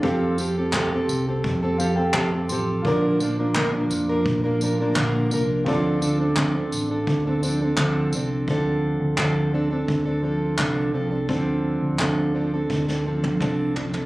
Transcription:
<<
  \new Staff \with { instrumentName = "Grand piano" } { \time 4/4 \key d \minor \tempo 4 = 85 << { r2 r8 f''16 g''16 a''8 c'''8 | r1 | r1 | r1 |
r1 | } \\ { <c' f' g' a' f''>1 | <f' bes' d''>1 | <c' d' f' a' d''>1 | r1 |
r1 | } >> }
  \new Staff \with { instrumentName = "Steel-string acoustic guitar" } { \time 4/4 \key d \minor <f c' g' a'>8 <f c' g' a'>16 <c' g' a'>16 <f c' g' a'>16 <c' g' a'>8 <c' g' a'>8 <c' g' a'>16 <f c' g' a'>16 <c' g' a'>16 <f c' g' a'>16 <c' g' a'>16 <f c' g' a'>8 | <bes, d f bes d' bes'>8 <f bes d' bes'>16 <f bes d' bes'>16 <bes, d f bes d' bes'>16 <f bes d' bes'>8 <f bes d' bes'>8 <f bes d' bes'>16 <f bes d' bes'>16 <f bes d' bes'>16 <bes, d f bes d' bes'>8 <f bes d' bes'>8 | <d f c' d' a'>8 <f c' d' a'>16 <c' d' a'>16 <d f c' d' a'>16 <c' d' a'>8 <c' d' a'>8 <c' d' a'>16 <f c' d' a'>16 <c' d' a'>16 <d f c' d' a'>8 <f c' d' a'>8 | <d f c' d' a'>4 <d f c' d' a'>8 <f c' d' a'>16 <c' d' a'>8 <c' d' a'>16 <f c' d' a'>8 <d f c' d' a'>8 <f c' d' a'>16 <c' d' a'>16 |
<d f c' d' a'>4 <d f c' d' a'>8 <f c' d' a'>16 <c' d' a'>8 <c' d' a'>16 <f c' d' a'>8 <d f c' d' a'>8 <f c' d' a'>16 <c' d' a'>16 | }
  \new Staff \with { instrumentName = "Fingered electric bass" } { \clef bass \time 4/4 \key d \minor f,4. c,8 f,4 f,8 a,,8 | bes,,4. f,8 bes,,4 bes,,8 c,8 | d,4. a,,8 d,4 d,8 c,8 | d,8. d,16 d,4 d,4 c,8 c,8 |
d,8. d,16 d,4 d,4 c,8 c,8 | }
  \new DrumStaff \with { instrumentName = "Drums" } \drummode { \time 4/4 bd8 tamb8 <hc bd>8 tamb8 bd8 tamb8 <hc bd>8 tamb8 | bd8 tamb8 <hc bd>8 tamb8 bd8 tamb8 <hc bd>8 tamb8 | bd8 tamb8 <hc bd>8 tamb8 bd8 tamb8 <hc bd>8 tamb8 | bd4 <hc bd>4 bd4 <hc bd>4 |
bd4 <hc bd>4 <bd sn>16 sn8 tommh16 <bd toml>8 tomfh16 tomfh16 | }
>>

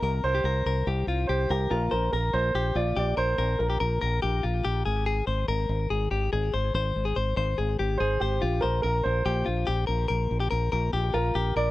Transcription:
<<
  \new Staff \with { instrumentName = "Upright piano" } { \time 4/4 \key bes \mixolydian \tempo 4 = 143 bes'8 c''2~ c''8 c''8 g'8 | bes'8 bes'8 bes'8 c''4 d''8 d''8 c''8~ | c''8 bes'2. r8 | r1 |
r2. c''8 g'8~ | g'8 bes'8 bes'8 c''2~ c''8~ | c''2~ c''8 bes'4 d''8 | }
  \new Staff \with { instrumentName = "Clean electric guitar" } { \time 4/4 \key bes \mixolydian bes'8. g'16 bes'8 bes'8 g'8 f'8 g'8 bes'8 | f'8 c''8 bes'4 g'8 f'8 g'8 bes'8 | bes'8. g'16 bes'8 bes'8 g'8 f'8 g'8 aes'8 | aes'8 c''8 bes'4 aes'8 g'8 aes'8 c''8 |
c''8. aes'16 c''8 c''8 aes'8 g'8 aes'8 c''8 | f'8 c''8 bes'4 g'8 f'8 g'8 bes'8 | bes'8. g'16 bes'8 bes'8 g'8 f'8 g'8 bes'8 | }
  \new Staff \with { instrumentName = "Fingered electric bass" } { \clef bass \time 4/4 \key bes \mixolydian c,8 c,8 c,8 c,8 c,8 c,8 c,8 c,8 | bes,,8 bes,,8 bes,,8 bes,,8 bes,,8 bes,,8 bes,,8 bes,,8 | bes,,8 bes,,8 bes,,8 bes,,8 bes,,8 bes,,8 bes,,8 aes,,8~ | aes,,8 aes,,8 aes,,8 aes,,8 aes,,8 aes,,8 aes,,8 aes,,8 |
aes,,8 aes,,8 aes,,8 aes,,8 aes,,8 aes,,8 aes,,8 aes,,8 | bes,,8 bes,,8 bes,,8 bes,,8 bes,,8 bes,,8 bes,,8 bes,,8 | bes,,8 bes,,8 bes,,8 bes,,8 bes,,8 bes,,8 bes,,8 bes,,8 | }
>>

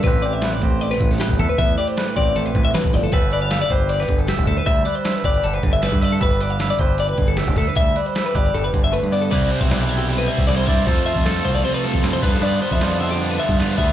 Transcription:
<<
  \new Staff \with { instrumentName = "Clean electric guitar" } { \time 4/4 \key g \mixolydian \tempo 4 = 155 b'8 d''16 e''8 d''16 c''8 d''16 b'8 a'16 g'8 a'16 b'16 | e''8 d''16 c''8 b'16 d''8 a'16 b'8 e''16 b'8 d''16 a'16 | b'8 d''16 f''8 d''16 c''8 d''16 b'8 a'16 g'8 a'16 b'16 | e''8 d''16 c''8 b'16 d''8 a'16 b'8 e''16 b'8 d''16 a'16 |
b'8 d''16 f''8 d''16 c''8 d''16 b'8 a'16 g'8 a'16 b'16 | e''8 d''16 c''8 b'16 d''8 a'16 b'8 e''16 b'8 d''16 a'16 | d''8 c''16 e''16 d''8 e''16 g'8 b'16 e''8 d''16 c''16 e''8 | c''8 e''8 a'8 c''16 d''16 c''16 b'16 a'8 r16 c''16 b'16 a'16 |
d''8 c''16 e''16 d''8 e''16 g'8 b'16 e''8 d''16 c''16 e''8 | }
  \new Staff \with { instrumentName = "Clean electric guitar" } { \time 4/4 \key g \mixolydian << { <c' g' b' e''>8 g'8 b'8 g'4. b'8 e''8 | b'8 g'8 b'8 g'2~ g'8 | e''8 b'8 e''8 b'4. e''8 e''8 | e''8 b'8 e''8 b'4. e''8 e''8 |
e''8 b'8 e''8 b'4. e''8 e''8 | e''8 b'8 e''8 b'2~ b'8 | b'8 g'8 b'8 e'4. e'8 d''8 | a'8 f'8 a'2 e'8 b'8 |
b'8 b'8 f'4. f'8 b'8 b'8 | } \\ { a,4. c'4 a,4. | a,4. c'4 a,8 e8 f8 | g4. g'4 d4. | g4. g'4 d4. |
g4. g'4 d4. | g4. g'4 d8 a8 b8 | c2 g8 g4. | f2 c8 a4 g8~ |
g4. d8 d'4. g8 | } >> }
  \new Staff \with { instrumentName = "Overdriven electric guitar" } { \time 4/4 \key g \mixolydian r1 | r1 | r1 | r1 |
r1 | r1 | <c g c' e'>8 <g c' e'>8 <c g c' e'>4 <c g c' e'>8 <g c' e'>8 <c g c' e'>8 <g c' e'>8 | <f a c' f'>8 <a c' f'>8 <f a c' f'>4 <f a c' f'>8 <a c' f'>8 <f a c' f'>8 <g, d f b f'>8 |
<g, d f b f'>8 <f b f'>8 <d f b f'>4 <g, d f b f'>8 <f b f'>8 <d f b f'>8 <f b f'>8 | }
  \new Staff \with { instrumentName = "Fingered electric bass" } { \clef bass \time 4/4 \key g \mixolydian a,,4. a,,4 a,,8. g,,16 e,16 r16 | e,8 r4 a,,8 a,,8 a,,8 a,,8 g,,8 | g,,4. g,,4 g,,8. f,,16 d,16 r16 | d,8 r4 g,,8 g,,8 g,,8. g,8. |
g,,4. g,,4 g,,8. f,,16 d,16 r16 | d,8 r4 g,,8 g,,8 g,,8. g,8. | c,8 r16 b,,2 c,8. g,8 | f,8. f,8. c,8 r8. f,8. g,8 |
g,8 r16 f,2 g,8. d,8 | }
  \new DrumStaff \with { instrumentName = "Drums" } \drummode { \time 4/4 <hh bd>16 hh16 hh8 <hh sn>8 <hh bd>8 hh16 <hh sn>16 <hh bd>16 <hh sn>16 <hh sn>16 <hh bd>16 <hh bd>8 | <hh bd>16 hh16 hh16 hh16 <hh sn>16 hh16 <hh bd>16 hh16 hh16 hh16 <hh bd>8 <hh sn>16 <hh bd>16 hho8 | <hh bd>16 hh16 hh8 <hh sn>8 <hh bd>8 hh16 <hh sn>16 <hh bd>16 hh16 <hh sn>16 <hh bd>16 <hh bd>8 | <hh bd>16 hh16 hh16 hh16 <hh sn>16 hh16 <hh bd>16 hh16 hh16 hh16 <hh bd>8 <hh sn>16 <hh bd>16 hho8 |
<hh bd>16 hh16 hh8 <hh sn>8 <hh bd>8 hh16 hh16 <hh bd>16 hh16 <hh sn>16 <hh bd>16 <hh bd sn>8 | <hh bd>16 hh16 hh16 hh16 <hh sn>16 hh16 <hh bd>16 hh16 hh16 hh16 <hh bd>8 hh16 hh16 hho8 | <hh bd>8 hh16 <hh bd>16 <hh sn>8 hh16 hh16 hh8 hh16 <hh bd>16 <hh sn>16 hh16 <hh bd>8 | <hh bd>16 hh16 hh16 <hh bd>16 <hh sn>16 hh16 <hh bd>16 hh16 hh16 hh16 <hh sn>16 bd16 <hh sn>8 <hho bd>16 hh16 |
hh8 hh16 <hh bd>16 <hh sn>8 hh16 hh16 hh8 <hh sn>16 <hh bd>16 <hh sn>16 hh16 <hh bd>8 | }
>>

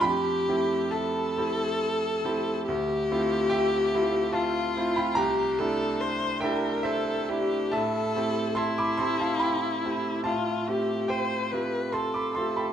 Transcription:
<<
  \new Staff \with { instrumentName = "Viola" } { \time 3/4 \key a \minor \tempo 4 = 71 g'4 a'2 | g'2 f'4 | g'8 a'8 c''8 bes'8 a'8 g'8 | a'4 e'2 |
f'8 g'8 c''8 b'8 a'4 | }
  \new Staff \with { instrumentName = "Grand piano" } { \time 3/4 \key a \minor << { <g'' b''>4 <e'' a''>4. r8 | r4 <e'' g''>4 <f'' a''>8. <g'' b''>16 | <g'' bes''>4. <e'' g''>8 <c'' e''>4 | <e'' a''>4 <a'' c'''>16 <b'' d'''>16 <a'' c'''>16 <f'' a''>16 <g'' b''>4 |
<f'' a''>4 <c'' g''>4 <a'' c'''>16 <b'' d'''>16 <a'' c'''>16 <g'' b''>16 | } \\ { f,8 <a c' e' g'>4 <a c' e' g'>4 <a c' e' g'>8 | d,8 <a c' e' f'>4 <a c' e' f'>4 <a c' e' f'>8 | c,8 <a d' e' g'>4 <a d' e' g'>4 <a d' e' g'>8 | a,8 <a c' e' g'>4 <a c' e' g'>4 <a c' e' g'>8 |
a,8 <a c' f' g'>4 <a c' f' g'>4 <a c' f' g'>8 | } >> }
>>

